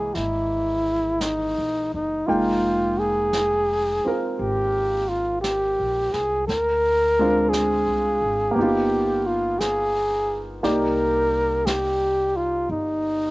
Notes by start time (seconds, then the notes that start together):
Already playing: C2 E3 G#3 A#3 G#4 D#5
0.15 G#1 E4, brush sweep, snare
1.21 D#4, brush sweep, snare, hi-hat pedal
1.58 A#1
1.94 F#1 D#4
2.27 F1 G#3 A#3 D#4 F4 G5, brush sweep
2.99 G#4
3.33 brush sweep, snare, hi-hat pedal
4.05 C4 F4 A#4, muted upright bass stroke
4.38 G#1 G4, brush sweep
5.09 F4
5.41 G4, brush sweep, snare, hi-hat pedal
5.79 A#1
6.13 C2 G#4, snare
6.47 D2 A#4, brush sweep, snare
7.19 G#3 C4 D4 F4
7.49 G#4, brush sweep, snare, hi-hat pedal
7.87 C2
8.22 G#1
8.51 A#3 B3 G4
8.56 G1 D#4, brush sweep
8.62 F4
9.26 F4
9.59 G#4, brush sweep, snare, hi-hat pedal
10.63 C2 A#3 D#4 G4 A#4 D5, brush sweep, snare
11.66 G4, brush sweep, snare, hi-hat pedal
12.36 F4
12.69 G1 D#4, brush sweep